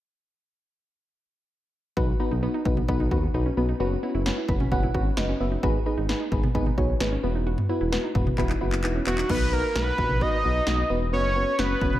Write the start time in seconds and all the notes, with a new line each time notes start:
1.97 B1 B3 D#4 F#4 B4, kick
2.20 B3 D#4 F#4 B4
2.31 B1 D#4
2.43 B3 D#4 F#4 B4
2.54 D#4
2.65 B1 B3 D#4 F#4 B4, kick
2.77 B3, mid tom
2.88 B1 B3 D#4 F#4 B4, kick
3.00 D#4, mid tom
3.11 D#2 B3 D#4 F#4 B4, kick
3.34 B1 B3 D#4 F#4 B4
3.46 C#4
3.57 B1 B3 D#4 F#4 B4
3.69 D#4
3.80 F#1 B3 C#4 F#4 B4
4.03 B3 C#4 E4 F#4 B4
4.14 F#1 E4
4.26 B3 C#4 F#4 B4, snare
4.37 E4
4.49 F#1 B3 C#4 F#4 B4 B5, kick
4.60 C#4, mid tom
4.72 F#1 B3 C#4 F#4 B4 F#5, kick
4.83 E4, mid tom
4.94 G#1 B3 C#4 F#4 B4 F#5, kick
5.17 F#1 B3 C#4 D#4 F#4 B4 D#5, snare
5.29 C#4
5.40 F#1 B3 C#4 F#4 B4 E5
5.52 D#4
5.63 G#1 B3 D#4 F#4 G#4 B4, kick
5.86 B3 D#4 G#4 B4
5.97 G#1 D#4
6.09 B3 D#4 G#4 B4, snare
6.20 D#4
6.32 G#1 B3 D#4 G#4 B4, kick
6.43 B3, mid tom
6.55 G#1 B3 D#4 G#4 B4, kick
6.66 D#4, mid tom
6.78 B1 B3 D#4 F#4 G#4 C#5, kick
7.00 G#1 B3 D#4 G#4 B4, snare
7.12 C#4
7.23 E1 B3 E4 F#4 B4
7.35 D#4
7.47 F#4
7.58 mid tom
7.69 B3 E4 F#4 B4
7.81 E1 E4
7.92 B3 E4 F#4 B4, snare
8.04 D#4
8.15 E1 B3 E4 F#4 B4, kick, mid tom
8.27 B3, mid tom
8.38 E1 B3 E4 F#4 B4, kick, clap
8.49 D#4, clap
8.61 F#1 B3 E4 F#4 B4
8.72 clap
8.84 E1 B3 D#4 E4 F#4 B4, clap
8.95 C#4
9.07 E1 B3 E4 F#4 B4, clap
9.18 D#4, clap
9.29 B1 B3 D#4 F#4 B4, kick, crash
9.52 B3 D#4 F#4 A#4 B4
9.75 B1 B3 D#4 F#4 B4, snare
9.98 A#1 B3 D#4 F#4 B4, kick
10.10 mid tom
10.21 B3 D#4 F#4 B4 D#5, kick
10.44 B1 B3 D#4 F#4 B4
10.67 B1 B3 D#4 F#4 B4, snare
10.90 E1 B3 D#4 F#4 B4
11.13 F#1 B3 C#4 F#4 B4 C#5
11.36 B3 C#4 F#4 B4
11.59 F#1 B3 C#4 F#4 B4, snare
11.81 E1 B3 C#4 F#4 B4, kick
11.93 mid tom